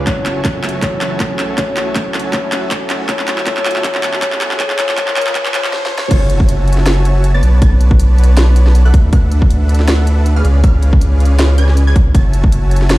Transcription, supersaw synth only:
0.07 F#4 C#5 E5 G#5 A5
0.82 F#4 C#5 E5 G#5 A5
1.58 F#4 C#5 E5 G#5 A5
2.34 F#4 C#5 E5 G#5 A5
3.09 F#4 C#5 E5 G#5 A5
3.47 F#4 C#5 E5 G#5 A5
3.84 F#4 C#5 E5 G#5 A5
4.22 F#4 C#5 E5 G#5 A5
4.60 F4 C#5 F5 G#5
4.79 F4 C#5 F5 G#5
4.98 F4 C#5 F5 G#5
5.16 F4 C#5 F5 G#5
5.35 F4 C#5 F5 G#5
5.54 F4 C#5 F5 G#5
6.11 F#4 C#5 E5 G#5 A5
7.34 B3 B4 C#5 D5 A5
7.62 B3 B4 C#5 D5 A5
8.85 D4 A4 B4 E5 F#5
9.13 D4 A4 B4 E5 F#5
10.36 C#4 G#4 B4 D5 F5
10.64 C#4 G#4 B4 D5 F5
11.58 C#4 G#4 B4 D5 G#5
11.87 C#4 G#4 B4 D5 G#5
12.15 F#4 C#5 E5 G#5 A5

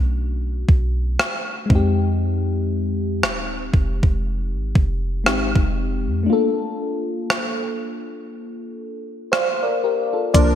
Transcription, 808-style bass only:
Already playing: B1
0.69 B1
1.70 F2
3.23 D#1
3.74 F1
4.03 F1
4.54 G#1
4.76 F1
5.27 G#1
5.56 F1
6.07 F2
10.35 C2

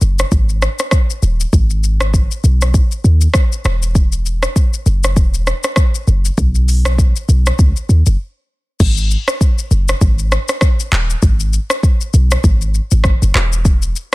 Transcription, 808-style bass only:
0.01 F#1
0.32 G#1
1.23 D#1
1.53 G#1
2.44 B1
3.04 D#2
3.65 E1
4.86 F#1
5.17 E1
6.08 F#1
6.38 B1
7.29 B1
7.59 C#2
7.89 D#2
8.07 F#1
8.80 G#1
9.71 F#1
10.01 G#1
10.92 D#1
11.23 G#1
12.14 B1
12.44 G#1
12.92 G#1
13.22 F#1
13.35 E1

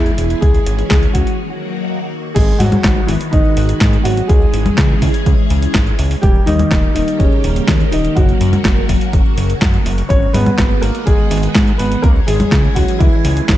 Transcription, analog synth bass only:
Already playing: E2
0.18 E1
0.42 C#2
0.67 G#1
0.91 C#2
1.15 C#2
2.36 G#1
2.60 G#2
2.84 G#1
3.09 G#1
3.33 G#1
3.57 G#1
3.81 G#2
4.05 G#1
4.29 C#2
4.54 G#1
4.78 C#2
5.02 C#2
5.26 C#2
5.50 C#2
5.75 G#1
5.99 C#2
6.23 D#1
6.47 D#2
6.71 D#1
6.96 D#1
7.20 D#1
7.44 D#1
7.68 D#2
7.92 D#1
8.17 F#1
8.41 F#2
8.65 F#1
8.89 F#1
9.13 F#1
9.38 F#1
9.62 F#2
9.86 F#1
10.10 G#1
10.34 G#2
10.59 G#1
10.83 G#1
11.07 G#1
11.31 G#1
11.55 G#2
11.79 G#1
12.04 C#2
12.28 G#1
12.52 C#2
12.76 C#2
13.00 C#2
13.25 C#2
13.49 G#1

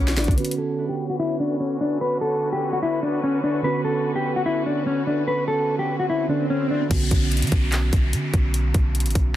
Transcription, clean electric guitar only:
Already playing: C#4
0.17 D4
0.38 B4
0.58 A4
0.89 G4
1.10 F#4
1.19 E4
1.40 D4
1.60 C#4
1.81 D4
2.01 B4
2.21 A4
2.53 G4
2.73 F#4
2.82 E4
3.03 D4
3.23 C#4
3.44 D4
3.64 B4
3.85 A4
4.16 G4
4.36 F#4
4.46 E4
4.66 D4
4.87 C#4
5.07 D4
5.28 B4
5.48 A4
5.79 G4
5.99 F#4
6.10 E4
6.29 D4
6.50 C#4
6.71 D4

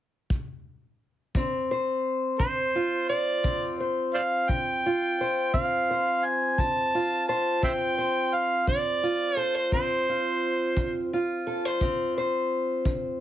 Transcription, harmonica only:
2.40 C5
3.09 D5
4.14 C5 D5 F5
4.49 G5
5.54 F5
6.24 G#5
6.59 A5
7.28 A5
7.64 C5 E5 G5
8.34 F5
8.68 D5
9.38 C5
9.73 C5

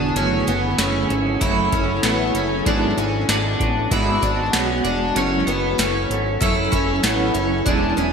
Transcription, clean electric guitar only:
Already playing: B3 D4 G#4
0.15 F#3 A3 E4 F#4 C#5
0.47 E4 F#4 C#5
0.78 A3 E4 F#4 C#5
1.08 E4 F#4 C#5
1.40 F#3 A3 E4 F#4 C#5
1.71 F#4 C#5
1.75 E4
2.03 A3 E4 F#4 C#5
2.33 E4 F#4 C#5
2.65 G#3 B3 F#4 G#4 D5
2.98 F#4 G#4
3.28 B3 F#4 G#4 D5
3.59 G#4 D5
3.63 F#4
3.91 G#3 B3 F#4 G#4 D5
4.21 G#4 D5
4.25 F#4
4.53 B3 F#4 G#4
4.84 F#4 G#4 D5
5.15 F#3 C#4 E4 A4 C#5
5.46 E4 A4 C#5
5.77 C#4 E4 A4 C#5
6.08 E4 A4 C#5
6.41 F#3 C#4 E4 A4 C#5
6.72 E4 A4 C#5
7.03 C#4 E4 A4 C#5
7.34 E4 A4 C#5
7.65 E3 G#3 B3 E4 G#4 D5
7.98 B3 E4 G#4

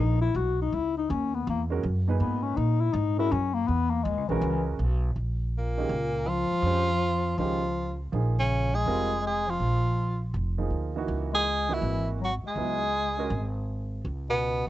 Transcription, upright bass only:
Already playing: A#1
0.34 B1
0.72 C#2
1.10 D#2
1.47 E2
1.83 F#2
2.20 G#2
2.57 A#2
2.93 G#2
3.32 F#2
3.68 E2
4.05 D#2
4.17 C#2
4.29 B1
4.41 C#2
4.79 B1
5.16 A#1
5.89 C#2
6.50 muted upright bass stroke
6.62 F2
7.38 C#2
8.13 A#1
8.86 F1
9.59 A#1
10.34 F1
10.70 D2
11.08 C#2
11.81 G#1
12.44 muted upright bass stroke
12.55 C#2
13.30 G#1
14.05 C#2

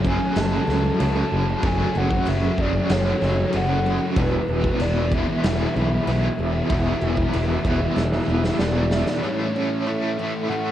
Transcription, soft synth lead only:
0.07 G#5
0.40 A5
1.02 A5
1.67 G#5
1.97 F#5
2.29 E5
2.61 D5
2.92 C#5
3.56 F#5
4.19 B4
4.81 D5
5.14 E5
8.59 D5
9.23 C#5
9.87 E5
10.49 F#5

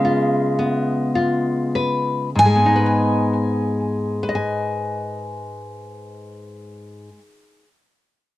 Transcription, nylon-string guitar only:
Already playing: C#3 G#3 B3 B4
0.05 F4
0.59 B3
1.15 F4
1.75 B4
2.35 G#2
2.45 G#3
2.55 B3
2.66 D#4
2.76 B4
4.23 B4
4.29 D#5
4.35 G#5

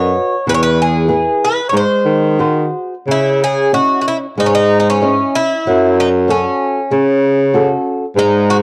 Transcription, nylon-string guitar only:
Already playing: F#4 B4 D#5
0.47 E3
1.08 E4 G#4 B4
1.73 G#3
2.39 F#4 G#4 C5
3.08 C#3
3.73 C#4 E4 D#5
4.38 G#3
5.02 C#4 E4 D#5
5.67 F#3
6.28 C#4 F#4 A4
6.91 C#3
7.54 C#4 F#4 A4
8.17 G#3

